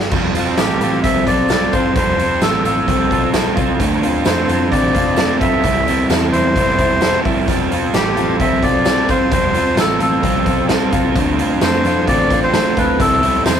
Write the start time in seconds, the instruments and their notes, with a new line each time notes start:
Already playing: clean electric guitar G3 A4
0.00 clean electric guitar G4, snare
0.11 picked electric bass F1, overdriven electric guitar F3 G3 C4 F4 A4, kick, crash, tambourine
0.35 overdriven electric guitar C4 F4 A4, closed hi-hat, tambourine
0.57 picked electric bass A1, overdriven electric guitar G3 C4 F4 A4, melodica G4, snare, closed hi-hat, tambourine
0.81 picked electric bass A1, overdriven electric guitar C4 F4 A4, closed hi-hat, tambourine
1.03 picked electric bass C2, overdriven electric guitar F3 G3 C4 F4 A4, melodica E5, kick, closed hi-hat, tambourine
1.26 picked electric bass B1, overdriven electric guitar C4 F4 A4, melodica D5, kick, closed hi-hat
1.49 overdriven electric guitar G3 C4 F4, snare, closed hi-hat, tambourine
1.53 overdriven electric guitar A4
1.72 picked electric bass G1, overdriven electric guitar F4 A4, melodica C5, kick, closed hi-hat, tambourine
1.76 overdriven electric guitar C4
1.95 picked electric bass F1, overdriven electric guitar F3 G3 C4 F4 A4, melodica C5, kick, closed hi-hat, tambourine
2.18 overdriven electric guitar C4 F4 A4, closed hi-hat, tambourine
2.41 picked electric bass A1, overdriven electric guitar G3 C4 F4 A4, melodica A4, snare, closed hi-hat, tambourine
2.64 picked electric bass A1, overdriven electric guitar C4 F4 A4, melodica A4, closed hi-hat, tambourine
2.87 picked electric bass C2, overdriven electric guitar F3 G3 C4 F4 A4, kick, closed hi-hat, tambourine
3.11 picked electric bass B1, overdriven electric guitar C4 F4 A4, kick, closed hi-hat
3.33 overdriven electric guitar G3 C4 F4 A4, snare, closed hi-hat, tambourine
3.57 picked electric bass C2, overdriven electric guitar C4 F4 A4, kick, closed hi-hat, tambourine
3.80 picked electric bass D2, overdriven electric guitar D3 A3 C4 F4 A4, kick, closed hi-hat, tambourine
4.03 overdriven electric guitar C4 F4 A4, closed hi-hat, tambourine
4.25 picked electric bass F2, overdriven electric guitar A3 C4 F4 A4, melodica C5, snare, closed hi-hat, tambourine
4.48 picked electric bass F2, overdriven electric guitar C4 F4 A4, closed hi-hat, tambourine
4.71 picked electric bass A1, overdriven electric guitar D3 A3 C4 F4 A4, melodica D5, kick, closed hi-hat
4.94 picked electric bass F1, overdriven electric guitar C4 F4 A4, kick, closed hi-hat, tambourine
5.16 overdriven electric guitar A3 C4 F4 A4, snare, closed hi-hat, tambourine
5.40 picked electric bass B1, overdriven electric guitar C4 F4 A4, melodica E5, kick, closed hi-hat, tambourine
5.63 picked electric bass C2, overdriven electric guitar C3 E3 G3 C4 E4 A4, kick, closed hi-hat, tambourine
5.86 overdriven electric guitar G3 C4 E4 A4, closed hi-hat, tambourine
6.09 picked electric bass E2, overdriven electric guitar G3 C4 E4 A4, snare, closed hi-hat, tambourine
6.32 picked electric bass E2, overdriven electric guitar G3 C4 E4 A4, melodica C5, closed hi-hat, tambourine
6.55 picked electric bass G1, overdriven electric guitar C3 E3 G3 C4 E4 A4, kick, closed hi-hat
6.78 picked electric bass E1, overdriven electric guitar G3 C4 E4 A4, kick, closed hi-hat, tambourine
7.01 overdriven electric guitar G3 C4 E4 A4, snare, closed hi-hat, tambourine
7.25 picked electric bass G1, overdriven electric guitar G3 C4 E4 A4, kick, open hi-hat, tambourine
7.47 picked electric bass F1, overdriven electric guitar F3 G3 C4 F4 A4, kick, closed hi-hat, tambourine
7.71 overdriven electric guitar C4 F4 A4, closed hi-hat, tambourine
7.93 picked electric bass A1, overdriven electric guitar G3 C4 F4 A4, melodica G4, snare, closed hi-hat, tambourine
8.16 picked electric bass A1, overdriven electric guitar C4 F4 A4, closed hi-hat, tambourine
8.39 picked electric bass C2, overdriven electric guitar F3 G3 C4 F4 A4, melodica E5, kick, closed hi-hat
8.62 picked electric bass B1, overdriven electric guitar C4 F4 A4, melodica D5, kick, closed hi-hat
8.85 overdriven electric guitar G3 C4 F4 A4, snare, closed hi-hat, tambourine
9.08 picked electric bass G1, overdriven electric guitar C4 F4 A4, melodica C5, kick, closed hi-hat, tambourine
9.31 picked electric bass F1, overdriven electric guitar F3 G3 C4 F4 A4, melodica C5, kick, closed hi-hat, tambourine
9.54 overdriven electric guitar C4 F4 A4, closed hi-hat, tambourine
9.76 picked electric bass A1, overdriven electric guitar G3 C4 F4 A4, melodica A4, snare, closed hi-hat, tambourine
9.99 picked electric bass A1, overdriven electric guitar C4 F4 A4, melodica A4, closed hi-hat, tambourine
10.22 picked electric bass C2, overdriven electric guitar F3 G3 C4 F4 A4, kick, closed hi-hat, tambourine
10.45 picked electric bass B1, overdriven electric guitar C4 F4 A4, kick, closed hi-hat, tambourine
10.69 overdriven electric guitar G3 C4 F4 A4, snare, closed hi-hat, tambourine
10.91 picked electric bass C2, overdriven electric guitar C4 F4 A4, kick, closed hi-hat, tambourine
11.15 picked electric bass D2, overdriven electric guitar D3 A3 C4 F4 A4, kick, closed hi-hat, tambourine
11.38 overdriven electric guitar C4 F4 A4, closed hi-hat, tambourine
11.61 picked electric bass F2, overdriven electric guitar A3 C4 F4, melodica C5, snare, closed hi-hat, tambourine
11.65 overdriven electric guitar A4
11.84 picked electric bass F2, overdriven electric guitar F4 A4, closed hi-hat, tambourine
11.88 overdriven electric guitar C4
12.07 picked electric bass A1, overdriven electric guitar D3 A3 C4 F4 A4, melodica D5, kick, closed hi-hat
12.30 picked electric bass A1, overdriven electric guitar F4 A4, kick, closed hi-hat, tambourine
12.35 overdriven electric guitar C4
12.44 melodica C5
12.53 overdriven electric guitar A3 C4 F4, clean electric guitar A4, snare, closed hi-hat, tambourine
12.57 overdriven electric guitar A4
12.76 picked electric bass D2, overdriven electric guitar C4 F4 A4, melodica B4, kick, closed hi-hat, tambourine
12.99 picked electric bass C2, overdriven electric guitar C3 E3 G3 C4 E4 A4, melodica A4, kick, closed hi-hat, tambourine
13.22 overdriven electric guitar G3 C4 E4 A4, closed hi-hat, tambourine
13.45 picked electric bass E2, overdriven electric guitar G3 C4 E4 A4, melodica C5, snare, closed hi-hat, tambourine